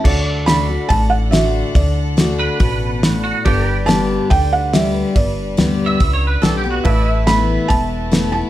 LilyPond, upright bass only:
\new Staff \with { instrumentName = "Upright bass" } { \clef bass \time 4/4 \key d \major \tempo 4 = 141 d,2 a,,2 | d,2 a,,2 | g,,2 d,2 | g,,4 d,4 cis,4 b,,4 |
a,,2 e,,2 | }